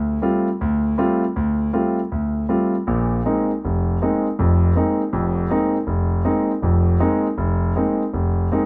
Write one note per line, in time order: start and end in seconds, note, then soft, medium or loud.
0.00 0.17 D2 medium
0.22 0.47 G3 medium
0.22 0.47 A3 soft
0.22 0.47 C4 soft
0.22 0.47 F4 medium
0.61 0.93 D2 medium
0.98 1.23 G3 medium
0.98 1.23 A3 medium
0.98 1.23 C4 medium
0.98 1.23 F4 medium
1.36 1.68 D2 medium
1.73 1.98 G3 soft
1.73 1.99 A3 medium
1.73 1.98 C4 soft
1.73 1.98 F4 medium
2.12 2.44 D2 medium
2.49 2.74 G3 medium
2.49 2.74 A3 soft
2.49 2.74 C4 medium
2.49 2.74 F4 medium
2.87 3.19 A#1 medium
2.87 3.19 A#2 medium
3.25 3.50 G#3 medium
3.25 3.50 A#3 medium
3.25 3.50 C4 soft
3.25 3.50 D#4 medium
3.64 3.96 F1 medium
4.02 4.26 G#3 medium
4.02 4.26 A#3 medium
4.02 4.26 C4 medium
4.02 4.26 D#4 medium
4.39 4.71 F1 medium
4.39 4.71 F2 medium
4.76 5.01 G#3 medium
4.76 5.01 A#3 soft
4.76 5.01 C4 soft
4.76 5.01 D#4 medium
5.13 5.45 F1 medium
5.13 5.45 F2 medium
5.50 5.75 G#3 medium
5.50 5.76 A#3 medium
5.50 5.76 C4 medium
5.50 5.76 D#4 medium
5.87 6.20 F1 medium
6.25 6.50 G#3 medium
6.25 6.51 A#3 soft
6.25 6.51 C4 medium
6.25 6.51 D#4 medium
6.62 6.95 F1 medium
6.62 6.96 F2 medium
7.00 7.26 G#3 medium
7.00 7.26 A#3 medium
7.00 7.26 C4 medium
7.00 7.26 D#4 medium
7.37 7.71 F1 medium
7.76 8.02 G#3 medium
7.76 8.01 A#3 soft
7.76 8.02 C4 soft
7.76 8.02 D#4 medium
8.13 8.46 F1 medium
8.52 8.65 G#3 medium
8.52 8.65 A#3 medium
8.52 8.65 C4 medium
8.52 8.65 D#4 medium